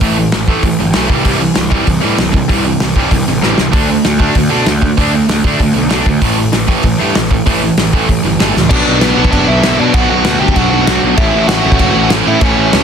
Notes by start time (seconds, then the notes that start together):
0.01 A1 A2 E3 A3, kick, open hi-hat
0.17 A2 E3
0.32 A1 A2 E3, snare, open hi-hat
0.48 A1 A2 E3 A3, kick
0.63 A1 A2 E3, kick, open hi-hat
0.80 G1 A2 E3
0.94 B1 A2 E3 A3, snare, open hi-hat
1.09 C2 C3 E3 G3, kick
1.25 C2 C3 E3 G3, kick, open hi-hat
1.41 C3 E3
1.55 C2 C3 E3, snare, open hi-hat
1.71 C3 E3 G3, kick
1.87 C2 C3 E3, kick, open hi-hat
2.01 A2 C3 E3 G3
2.18 C2 C3 E3, snare, open hi-hat
2.32 C3 E3, kick
2.49 C2 C3 E3 G3, kick, open hi-hat
2.66 C3 E3
2.80 C2 C3 E3, snare, open hi-hat
2.96 C2 C3 E3 G3, kick
3.11 C2 C3 E3, kick, open hi-hat
3.28 A1 C3 E3
3.42 A1 C3 E3 G3, snare
3.58 C2 C3 E3, snare
3.72 D2 D3 A3 D4, kick, open hi-hat
3.89 D3 A3
4.05 D2 D3 A3, snare, open hi-hat
4.19 D3 A3 D4, kick
4.35 D2 D3 A3, kick, open hi-hat
4.50 B2 D3 A3 D4
4.66 D2 D3 A3, snare, open hi-hat
4.81 D3 A3, kick
4.97 D2 D3 A3 D4, kick, open hi-hat
5.12 D3 A3
5.16 D3
5.29 D2 D3 A3, snare, open hi-hat
5.44 D2 D3 A3 D4, kick
5.60 D2 D3 A3, kick, open hi-hat
5.74 B1 D3 A3
5.78 A3
5.89 B1 D3 A3 D4, snare, open hi-hat
6.06 D2 D3 A3, kick
6.21 A1 A2 E3 A3, kick, open hi-hat
6.38 A2 E3
6.53 A1 A2 E3, snare, open hi-hat
6.68 A2 E3 A3, kick
6.83 A1 A2 E3, kick, open hi-hat
7.00 G2 A2 E3 A3
7.15 A1 A2 E3, snare, open hi-hat
7.30 A2 E3, kick
7.46 A1 A2 E3 A3, kick, open hi-hat
7.64 A2 E3
7.77 A1 A2 E3, snare, open hi-hat
7.93 A1 A2 E3 A3, kick
8.08 A1 A2 E3, kick, open hi-hat
8.23 G1 A2 E3
8.39 G1 A2 E3 A3, snare, open hi-hat
8.56 C#2 A2 E3, snare
8.69 B1 B2 F#3 B3 D4 D5, kick, crash
8.73 F#4
8.87 B1
9.00 B1 B3 B4, snare, crash
9.15 B1 B2 F#3 B3 D4 F#4
9.25 kick
9.32 F#1 D4 D5, kick, crash
9.48 B1 E4 E5
9.63 B1 B2 F#3 B3 D4 F#4, snare, crash
9.80 B2 D4 D5
9.94 B1 B2 F#3 B3 D4 F#4 F#5, kick, crash
10.09 B1 F#4 F#5
10.24 D2, snare, crash
10.39 D2 B2 F#3 B3 D4 F#4 G4 G5
10.48 kick
10.56 B1 F#4 F#5, kick, crash
10.70 B1 F#4 F#5
10.87 B1 B2 F#3 B3 D4 F#4, snare, crash
11.03 B1
11.16 A1 A2 E3 A3 C#4 E4 E5, kick, crash
11.34 A1
11.47 A1 F#4 F#5, snare, crash
11.62 A1 A2 E3 A3 C#4 E4
11.72 kick
11.79 E1 F#4 F#5, kick, crash
11.95 A1
12.10 A1 A2 E3 A3 C#4 E4, snare, crash
12.27 A2 E4 E5
12.41 A1 A2 E3 A3 C#4 C#5, kick, crash
12.45 C#4 E4
12.57 A1
12.73 C#2, snare, crash